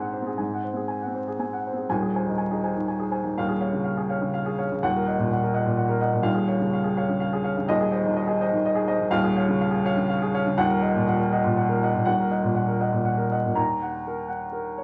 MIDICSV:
0, 0, Header, 1, 2, 480
1, 0, Start_track
1, 0, Tempo, 501253
1, 375, Time_signature, 3, 2, 24, 8
1, 2771, Tempo, 480000
1, 10931, Tempo, 503778
1, 13331, Tempo, 483481
1, 14587, End_track
2, 0, Start_track
2, 0, Title_t, "Grand piano"
2, 0, Program_c, 0, 0
2, 0, Control_c, 0, 64, 127
2, 0, Note_on_c, 0, 44, 63
2, 0, Note_on_c, 0, 60, 43
2, 0, Note_on_c, 0, 68, 48
2, 0, Note_on_c, 0, 72, 51
2, 0, Note_on_c, 0, 78, 51
2, 0, Note_on_c, 0, 80, 48
2, 2, Note_off_c, 0, 78, 0
2, 2, Note_on_c, 0, 78, 51
2, 122, Note_off_c, 0, 72, 0
2, 122, Note_on_c, 0, 72, 46
2, 146, Note_off_c, 0, 60, 0
2, 199, Note_off_c, 0, 78, 0
2, 209, Note_on_c, 0, 60, 39
2, 256, Note_off_c, 0, 68, 0
2, 256, Note_on_c, 0, 68, 41
2, 321, Note_off_c, 0, 72, 0
2, 324, Note_off_c, 0, 44, 0
2, 362, Note_off_c, 0, 80, 0
2, 362, Note_on_c, 0, 80, 49
2, 364, Note_on_c, 0, 44, 53
2, 396, Control_c, 0, 64, 0
2, 451, Note_off_c, 0, 68, 0
2, 472, Note_off_c, 0, 60, 0
2, 514, Note_on_c, 0, 78, 41
2, 529, Control_c, 0, 64, 127
2, 565, Note_off_c, 0, 80, 0
2, 612, Note_on_c, 0, 72, 41
2, 700, Note_on_c, 0, 60, 36
2, 701, Note_off_c, 0, 78, 0
2, 732, Note_on_c, 0, 68, 41
2, 810, Note_off_c, 0, 72, 0
2, 843, Note_on_c, 0, 80, 47
2, 930, Note_off_c, 0, 68, 0
2, 958, Note_off_c, 0, 60, 0
2, 975, Note_on_c, 0, 78, 41
2, 1019, Note_on_c, 0, 60, 39
2, 1045, Note_off_c, 0, 80, 0
2, 1099, Note_on_c, 0, 72, 43
2, 1172, Note_off_c, 0, 78, 0
2, 1224, Note_on_c, 0, 68, 43
2, 1278, Note_off_c, 0, 60, 0
2, 1294, Note_off_c, 0, 72, 0
2, 1331, Note_on_c, 0, 60, 40
2, 1337, Note_on_c, 0, 80, 45
2, 1418, Note_off_c, 0, 68, 0
2, 1466, Note_on_c, 0, 78, 42
2, 1536, Note_off_c, 0, 80, 0
2, 1598, Note_off_c, 0, 60, 0
2, 1598, Note_on_c, 0, 72, 39
2, 1656, Note_on_c, 0, 60, 37
2, 1661, Note_off_c, 0, 78, 0
2, 1691, Note_on_c, 0, 68, 37
2, 1785, Note_off_c, 0, 44, 0
2, 1786, Note_off_c, 0, 72, 0
2, 1810, Note_on_c, 0, 27, 60
2, 1816, Note_on_c, 0, 80, 72
2, 1819, Note_off_c, 0, 68, 0
2, 1821, Note_on_c, 0, 39, 65
2, 1822, Note_off_c, 0, 60, 0
2, 1849, Control_c, 0, 64, 0
2, 1937, Note_on_c, 0, 68, 48
2, 1979, Control_c, 0, 64, 127
2, 2011, Note_off_c, 0, 80, 0
2, 2062, Note_on_c, 0, 72, 48
2, 2069, Note_on_c, 0, 80, 53
2, 2130, Note_off_c, 0, 68, 0
2, 2167, Note_on_c, 0, 51, 50
2, 2169, Note_off_c, 0, 72, 0
2, 2173, Note_off_c, 0, 80, 0
2, 2176, Note_on_c, 0, 63, 47
2, 2279, Note_on_c, 0, 80, 58
2, 2363, Note_off_c, 0, 51, 0
2, 2368, Note_off_c, 0, 63, 0
2, 2398, Note_on_c, 0, 63, 49
2, 2404, Note_on_c, 0, 68, 50
2, 2478, Note_off_c, 0, 80, 0
2, 2522, Note_on_c, 0, 72, 49
2, 2528, Note_on_c, 0, 80, 53
2, 2596, Note_off_c, 0, 63, 0
2, 2600, Note_off_c, 0, 68, 0
2, 2634, Note_off_c, 0, 72, 0
2, 2637, Note_off_c, 0, 80, 0
2, 2640, Note_on_c, 0, 51, 53
2, 2759, Note_on_c, 0, 80, 55
2, 2836, Note_off_c, 0, 51, 0
2, 2872, Note_on_c, 0, 68, 52
2, 2959, Note_off_c, 0, 80, 0
2, 2987, Note_on_c, 0, 72, 52
2, 2995, Note_on_c, 0, 80, 54
2, 3076, Note_off_c, 0, 68, 0
2, 3108, Note_off_c, 0, 72, 0
2, 3112, Note_off_c, 0, 80, 0
2, 3114, Note_on_c, 0, 51, 47
2, 3205, Note_off_c, 0, 27, 0
2, 3211, Note_off_c, 0, 39, 0
2, 3245, Note_off_c, 0, 51, 0
2, 3248, Note_on_c, 0, 27, 59
2, 3255, Note_on_c, 0, 77, 72
2, 3262, Note_on_c, 0, 39, 62
2, 3275, Control_c, 0, 64, 0
2, 3364, Note_on_c, 0, 68, 51
2, 3435, Control_c, 0, 64, 127
2, 3449, Note_off_c, 0, 77, 0
2, 3483, Note_on_c, 0, 77, 51
2, 3488, Note_on_c, 0, 73, 47
2, 3564, Note_off_c, 0, 68, 0
2, 3599, Note_off_c, 0, 77, 0
2, 3600, Note_on_c, 0, 49, 51
2, 3601, Note_off_c, 0, 73, 0
2, 3720, Note_on_c, 0, 77, 56
2, 3802, Note_off_c, 0, 49, 0
2, 3851, Note_on_c, 0, 68, 50
2, 3922, Note_off_c, 0, 77, 0
2, 3973, Note_on_c, 0, 77, 54
2, 3976, Note_on_c, 0, 73, 49
2, 4048, Note_off_c, 0, 68, 0
2, 4085, Note_off_c, 0, 77, 0
2, 4087, Note_off_c, 0, 73, 0
2, 4093, Note_on_c, 0, 49, 54
2, 4213, Note_on_c, 0, 77, 56
2, 4290, Note_off_c, 0, 49, 0
2, 4335, Note_on_c, 0, 68, 54
2, 4411, Note_off_c, 0, 77, 0
2, 4458, Note_on_c, 0, 73, 54
2, 4465, Note_on_c, 0, 77, 54
2, 4532, Note_off_c, 0, 68, 0
2, 4569, Note_off_c, 0, 73, 0
2, 4573, Note_off_c, 0, 77, 0
2, 4595, Note_on_c, 0, 49, 50
2, 4661, Note_off_c, 0, 27, 0
2, 4668, Note_off_c, 0, 39, 0
2, 4700, Note_on_c, 0, 27, 60
2, 4706, Note_on_c, 0, 39, 64
2, 4707, Note_on_c, 0, 78, 78
2, 4710, Note_off_c, 0, 49, 0
2, 4720, Control_c, 0, 64, 0
2, 4839, Note_on_c, 0, 70, 53
2, 4888, Control_c, 0, 64, 127
2, 4897, Note_off_c, 0, 78, 0
2, 4945, Note_on_c, 0, 78, 56
2, 4950, Note_on_c, 0, 75, 49
2, 5022, Note_off_c, 0, 70, 0
2, 5052, Note_off_c, 0, 78, 0
2, 5054, Note_off_c, 0, 75, 0
2, 5060, Note_on_c, 0, 46, 54
2, 5198, Note_on_c, 0, 78, 59
2, 5252, Note_off_c, 0, 46, 0
2, 5310, Note_on_c, 0, 70, 52
2, 5380, Note_off_c, 0, 78, 0
2, 5414, Note_on_c, 0, 75, 51
2, 5423, Note_on_c, 0, 78, 59
2, 5495, Note_off_c, 0, 70, 0
2, 5523, Note_off_c, 0, 75, 0
2, 5528, Note_off_c, 0, 78, 0
2, 5533, Note_on_c, 0, 46, 58
2, 5648, Note_on_c, 0, 78, 59
2, 5725, Note_off_c, 0, 46, 0
2, 5767, Note_on_c, 0, 70, 59
2, 5841, Note_off_c, 0, 78, 0
2, 5882, Note_on_c, 0, 75, 53
2, 5884, Note_on_c, 0, 78, 58
2, 5960, Note_off_c, 0, 70, 0
2, 5994, Note_off_c, 0, 75, 0
2, 5995, Note_off_c, 0, 78, 0
2, 6007, Note_on_c, 0, 46, 54
2, 6079, Note_off_c, 0, 27, 0
2, 6090, Note_off_c, 0, 39, 0
2, 6094, Note_on_c, 0, 27, 65
2, 6107, Note_on_c, 0, 39, 71
2, 6107, Note_on_c, 0, 77, 82
2, 6128, Note_off_c, 0, 46, 0
2, 6147, Control_c, 0, 64, 0
2, 6221, Note_on_c, 0, 68, 57
2, 6308, Note_off_c, 0, 77, 0
2, 6310, Control_c, 0, 64, 127
2, 6353, Note_on_c, 0, 73, 57
2, 6360, Note_on_c, 0, 77, 56
2, 6424, Note_off_c, 0, 68, 0
2, 6466, Note_off_c, 0, 73, 0
2, 6470, Note_off_c, 0, 77, 0
2, 6474, Note_on_c, 0, 49, 57
2, 6610, Note_on_c, 0, 77, 61
2, 6670, Note_off_c, 0, 49, 0
2, 6717, Note_on_c, 0, 68, 54
2, 6798, Note_off_c, 0, 77, 0
2, 6847, Note_on_c, 0, 73, 58
2, 6849, Note_on_c, 0, 77, 65
2, 6912, Note_off_c, 0, 68, 0
2, 6952, Note_off_c, 0, 73, 0
2, 6954, Note_off_c, 0, 77, 0
2, 6969, Note_on_c, 0, 49, 63
2, 7079, Note_on_c, 0, 77, 64
2, 7156, Note_off_c, 0, 49, 0
2, 7209, Note_on_c, 0, 68, 65
2, 7270, Note_off_c, 0, 77, 0
2, 7311, Note_on_c, 0, 73, 57
2, 7320, Note_on_c, 0, 77, 67
2, 7394, Note_off_c, 0, 68, 0
2, 7422, Note_off_c, 0, 73, 0
2, 7426, Note_off_c, 0, 77, 0
2, 7451, Note_on_c, 0, 49, 62
2, 7499, Note_off_c, 0, 27, 0
2, 7506, Note_off_c, 0, 39, 0
2, 7549, Note_on_c, 0, 27, 71
2, 7563, Note_on_c, 0, 39, 75
2, 7563, Note_on_c, 0, 75, 92
2, 7564, Note_off_c, 0, 49, 0
2, 7576, Control_c, 0, 64, 0
2, 7681, Note_on_c, 0, 68, 65
2, 7752, Note_off_c, 0, 75, 0
2, 7760, Control_c, 0, 64, 127
2, 7791, Note_on_c, 0, 72, 58
2, 7799, Note_on_c, 0, 75, 65
2, 7871, Note_off_c, 0, 68, 0
2, 7901, Note_off_c, 0, 72, 0
2, 7906, Note_off_c, 0, 75, 0
2, 7920, Note_on_c, 0, 51, 65
2, 7923, Note_on_c, 0, 63, 56
2, 8042, Note_on_c, 0, 75, 69
2, 8110, Note_off_c, 0, 51, 0
2, 8112, Note_off_c, 0, 63, 0
2, 8145, Note_on_c, 0, 63, 58
2, 8150, Note_on_c, 0, 68, 59
2, 8231, Note_off_c, 0, 75, 0
2, 8282, Note_on_c, 0, 72, 63
2, 8293, Note_on_c, 0, 75, 72
2, 8343, Note_off_c, 0, 63, 0
2, 8345, Note_off_c, 0, 68, 0
2, 8387, Note_off_c, 0, 72, 0
2, 8393, Note_off_c, 0, 75, 0
2, 8401, Note_on_c, 0, 51, 70
2, 8533, Note_on_c, 0, 75, 67
2, 8590, Note_off_c, 0, 51, 0
2, 8629, Note_on_c, 0, 68, 71
2, 8716, Note_off_c, 0, 75, 0
2, 8752, Note_on_c, 0, 72, 66
2, 8757, Note_on_c, 0, 75, 72
2, 8825, Note_off_c, 0, 68, 0
2, 8862, Note_off_c, 0, 72, 0
2, 8865, Note_off_c, 0, 75, 0
2, 8875, Note_on_c, 0, 51, 62
2, 8953, Note_off_c, 0, 27, 0
2, 8960, Note_off_c, 0, 39, 0
2, 8979, Note_on_c, 0, 27, 80
2, 8986, Note_on_c, 0, 77, 100
2, 8987, Note_on_c, 0, 39, 83
2, 8997, Note_off_c, 0, 51, 0
2, 9015, Control_c, 0, 64, 0
2, 9114, Note_on_c, 0, 68, 69
2, 9185, Note_off_c, 0, 77, 0
2, 9211, Control_c, 0, 64, 127
2, 9241, Note_on_c, 0, 73, 62
2, 9247, Note_on_c, 0, 77, 72
2, 9309, Note_off_c, 0, 68, 0
2, 9349, Note_off_c, 0, 73, 0
2, 9352, Note_off_c, 0, 77, 0
2, 9362, Note_on_c, 0, 49, 67
2, 9481, Note_on_c, 0, 77, 73
2, 9555, Note_off_c, 0, 49, 0
2, 9586, Note_on_c, 0, 68, 66
2, 9674, Note_off_c, 0, 77, 0
2, 9730, Note_on_c, 0, 73, 67
2, 9734, Note_on_c, 0, 77, 78
2, 9788, Note_off_c, 0, 68, 0
2, 9836, Note_off_c, 0, 73, 0
2, 9838, Note_off_c, 0, 77, 0
2, 9843, Note_on_c, 0, 49, 69
2, 9962, Note_on_c, 0, 77, 72
2, 10037, Note_off_c, 0, 49, 0
2, 10098, Note_on_c, 0, 68, 67
2, 10157, Note_off_c, 0, 77, 0
2, 10217, Note_on_c, 0, 73, 67
2, 10223, Note_on_c, 0, 77, 72
2, 10286, Note_off_c, 0, 68, 0
2, 10322, Note_off_c, 0, 73, 0
2, 10325, Note_off_c, 0, 77, 0
2, 10343, Note_on_c, 0, 49, 64
2, 10401, Note_off_c, 0, 27, 0
2, 10405, Note_off_c, 0, 39, 0
2, 10448, Note_on_c, 0, 27, 73
2, 10455, Note_on_c, 0, 39, 83
2, 10455, Note_on_c, 0, 78, 93
2, 10457, Note_off_c, 0, 49, 0
2, 10465, Control_c, 0, 64, 0
2, 10569, Note_on_c, 0, 70, 66
2, 10629, Control_c, 0, 64, 127
2, 10645, Note_off_c, 0, 78, 0
2, 10695, Note_on_c, 0, 75, 61
2, 10697, Note_on_c, 0, 78, 64
2, 10762, Note_off_c, 0, 70, 0
2, 10802, Note_off_c, 0, 75, 0
2, 10802, Note_off_c, 0, 78, 0
2, 10830, Note_on_c, 0, 46, 64
2, 10949, Note_on_c, 0, 78, 70
2, 11011, Note_off_c, 0, 46, 0
2, 11064, Note_on_c, 0, 70, 60
2, 11128, Note_off_c, 0, 78, 0
2, 11186, Note_on_c, 0, 78, 62
2, 11188, Note_on_c, 0, 75, 58
2, 11245, Note_off_c, 0, 70, 0
2, 11284, Note_off_c, 0, 78, 0
2, 11285, Note_off_c, 0, 75, 0
2, 11298, Note_on_c, 0, 46, 63
2, 11424, Note_on_c, 0, 78, 63
2, 11481, Note_off_c, 0, 46, 0
2, 11537, Note_on_c, 0, 70, 60
2, 11604, Note_off_c, 0, 78, 0
2, 11667, Note_on_c, 0, 75, 52
2, 11670, Note_on_c, 0, 78, 58
2, 11721, Note_off_c, 0, 70, 0
2, 11763, Note_off_c, 0, 75, 0
2, 11765, Note_off_c, 0, 78, 0
2, 11779, Note_on_c, 0, 46, 52
2, 11843, Note_off_c, 0, 27, 0
2, 11847, Note_off_c, 0, 39, 0
2, 11878, Note_on_c, 0, 27, 62
2, 11883, Note_on_c, 0, 78, 82
2, 11887, Note_on_c, 0, 39, 64
2, 11891, Note_off_c, 0, 46, 0
2, 11902, Control_c, 0, 64, 0
2, 12021, Note_on_c, 0, 70, 54
2, 12077, Note_off_c, 0, 78, 0
2, 12089, Control_c, 0, 64, 127
2, 12121, Note_on_c, 0, 75, 49
2, 12132, Note_on_c, 0, 78, 55
2, 12206, Note_off_c, 0, 70, 0
2, 12231, Note_off_c, 0, 75, 0
2, 12237, Note_off_c, 0, 78, 0
2, 12245, Note_on_c, 0, 46, 50
2, 12356, Note_on_c, 0, 78, 59
2, 12438, Note_off_c, 0, 46, 0
2, 12479, Note_on_c, 0, 70, 51
2, 12554, Note_off_c, 0, 78, 0
2, 12600, Note_on_c, 0, 75, 50
2, 12602, Note_on_c, 0, 78, 57
2, 12675, Note_off_c, 0, 70, 0
2, 12711, Note_off_c, 0, 75, 0
2, 12712, Note_off_c, 0, 78, 0
2, 12713, Note_on_c, 0, 46, 51
2, 12833, Note_on_c, 0, 78, 53
2, 12913, Note_off_c, 0, 46, 0
2, 12951, Note_on_c, 0, 70, 51
2, 13035, Note_off_c, 0, 78, 0
2, 13084, Note_on_c, 0, 75, 47
2, 13088, Note_on_c, 0, 78, 52
2, 13156, Note_off_c, 0, 70, 0
2, 13197, Note_off_c, 0, 75, 0
2, 13199, Note_off_c, 0, 78, 0
2, 13224, Note_on_c, 0, 46, 46
2, 13292, Note_off_c, 0, 27, 0
2, 13297, Note_off_c, 0, 39, 0
2, 13312, Note_on_c, 0, 82, 65
2, 13316, Note_on_c, 0, 39, 54
2, 13338, Note_off_c, 0, 46, 0
2, 13353, Control_c, 0, 64, 0
2, 13513, Control_c, 0, 64, 127
2, 13579, Note_on_c, 0, 78, 44
2, 13712, Note_off_c, 0, 82, 0
2, 13826, Note_on_c, 0, 70, 46
2, 13962, Note_off_c, 0, 78, 0
2, 14038, Note_on_c, 0, 78, 50
2, 14203, Note_off_c, 0, 70, 0
2, 14275, Note_on_c, 0, 70, 45
2, 14428, Note_off_c, 0, 78, 0
2, 14528, Note_on_c, 0, 73, 46
2, 14587, Note_off_c, 0, 39, 0
2, 14587, Note_off_c, 0, 70, 0
2, 14587, Note_off_c, 0, 73, 0
2, 14587, End_track
0, 0, End_of_file